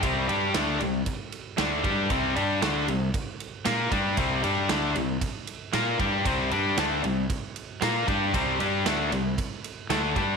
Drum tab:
RD |xxxxxxxx|xxxxxxxx|xxxxxxxx|xxxxxxxx|
SD |--o---o-|--o---o-|--o---o-|--o---o-|
BD |o---o--o|o---o--o|o---o--o|o---o--o|

RD |xxxxxxxx|
SD |--o---o-|
BD |o---o--o|